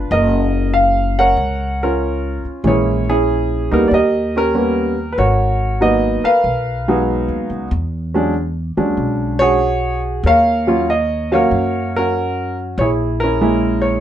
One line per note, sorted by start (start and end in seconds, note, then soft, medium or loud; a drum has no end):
0.11 1.34 F#1 medium
0.11 1.18 A#4 medium
0.11 0.71 D#5 medium
0.74 1.19 F5 medium
1.19 1.81 A#4 medium
1.19 2.42 C#5 medium
1.19 1.84 F#5 medium
1.37 2.40 C#2 medium
1.83 2.62 C#4 medium
1.83 2.62 F4 soft
1.83 2.42 A#4 medium
2.44 muted upright bass stroke soft
2.64 3.67 A#1 medium
2.64 3.04 E3 soft
2.64 3.04 G#3 soft
2.64 3.04 A#3 soft
2.64 3.04 C#4 soft
2.64 3.11 C#5 medium
2.68 3.09 E4 medium
2.68 3.08 G#4 medium
3.09 3.88 C#4 medium
3.09 3.88 E4 soft
3.09 3.74 G#4 medium
3.71 3.90 D2 medium
3.71 3.89 G3 medium
3.71 3.89 A#3 medium
3.71 3.89 B3 soft
3.71 3.89 D#4 medium
3.71 3.87 A#4 medium
3.88 5.14 D#2 medium
3.88 3.92 D5 medium
3.93 4.34 G4 medium
3.93 4.36 A#4 medium
3.93 4.37 D#5 medium
4.36 4.53 C#4 medium
4.36 5.14 G4 medium
4.36 5.16 A#4 medium
4.54 4.94 G3 soft
4.54 4.94 A#3 soft
4.54 4.94 B3 soft
4.54 4.94 C#4 medium
5.12 5.17 B4 medium
5.18 6.21 G#1 medium
5.18 6.41 F#4 medium
5.18 6.23 A#4 medium
5.18 5.78 C#5 medium
5.81 6.20 F#3 soft
5.81 6.20 A#3 soft
5.81 6.20 B3 soft
5.81 6.20 D#4 medium
5.81 6.26 D#5 medium
6.24 7.47 A#4 medium
6.24 7.47 B4 medium
6.24 7.48 F5 medium
6.24 muted upright bass stroke soft
6.44 7.25 B1 medium
6.88 7.67 F#3 medium
6.88 7.67 G#3 medium
6.88 7.68 B3 medium
6.88 7.68 D#4 medium
7.28 7.48 D#2 medium
7.50 7.70 C#2 medium
7.71 8.74 E2 medium
8.14 8.33 F#3 medium
8.14 8.33 G#3 medium
8.14 8.32 C#4 medium
8.14 8.33 D4 medium
8.77 8.96 D#2 medium
8.77 9.57 F#3 soft
8.77 9.57 G#3 soft
8.77 9.57 C#4 soft
8.77 9.57 D4 medium
8.97 10.20 B1 medium
9.39 10.21 F#4 medium
9.39 10.21 G#4 medium
9.39 10.00 C#5 loud
10.23 11.47 D#2 medium
10.23 11.34 A#4 medium
10.23 11.32 C#5 medium
10.23 10.91 F5 medium
10.67 10.86 F#3 medium
10.67 10.86 A#3 medium
10.67 10.86 C#4 medium
10.67 10.86 F4 medium
10.90 11.34 D#5 medium
11.32 12.11 F#3 medium
11.32 12.11 A#3 soft
11.32 11.97 C#4 soft
11.32 11.97 F#4 medium
11.32 11.95 A#4 medium
11.32 11.98 C#5 medium
11.32 12.11 F5 medium
11.51 12.74 F#2 medium
11.96 12.76 C#4 soft
11.96 12.76 F#4 soft
11.96 12.55 A#4 medium
12.78 14.00 A#1 medium
12.78 13.22 E4 medium
12.78 14.00 G#4 medium
12.78 12.89 C#5 medium
13.20 13.40 C#4 medium
13.20 13.40 E4 soft
13.20 13.86 A#4 medium
13.41 14.00 G#3 medium
13.41 14.00 A#3 soft
13.41 14.00 C#4 soft
13.41 14.00 E4 medium
13.82 14.00 C#5 medium